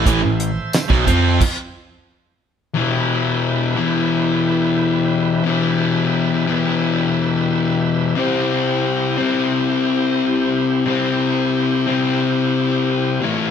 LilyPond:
<<
  \new Staff \with { instrumentName = "Tonewheel organ" } { \time 4/4 \key e \phrygian \tempo 4 = 89 <a' c'' e''>2 r2 | <e' g' b'>1 | <g' b' e''>1 | <e' g' c''>1 |
<e' g' c''>2.~ \tuplet 3/2 { <e' g' c''>8. <f' bes' cis''>8 <e' a' c''>16 } | }
  \new Staff \with { instrumentName = "Distorted electric guitar" } { \clef bass \time 4/4 \key e \phrygian <a, e>16 <a, e>8 r8 <b, fis>16 <f c' f'>8 r2 | <e, b, e>4. <e, b, e>2~ <e, b, e>8 | <e, b, e>4. <e, b, e>2~ <e, b, e>8 | <c g c'>4. <c g c'>2~ <c g c'>8 |
<c g c'>4. <c g c'>2 <a, e a>8 | }
  \new Staff \with { instrumentName = "Overdriven electric guitar" } { \clef bass \time 4/4 \key e \phrygian <a, e>16 <a, e>8 r8 <b, fis>16 <f c' f'>8 r2 | r1 | r1 | r1 |
r1 | }
  \new Staff \with { instrumentName = "Picked electric bass" } { \clef bass \time 4/4 \key e \phrygian a,,16 a,,8 r8 b,,16 f,8 r2 | r1 | r1 | r1 |
r1 | }
  \new DrumStaff \with { instrumentName = "Drums" } \drummode { \time 4/4 <hh bd>8 hh8 <hh sn tamb>16 <bd sn>16 <hh bd>8 <cymc bd>4 r4 | r4 r4 r4 r4 | r4 r4 r4 r4 | r4 r4 r4 r4 |
r4 r4 r4 r4 | }
>>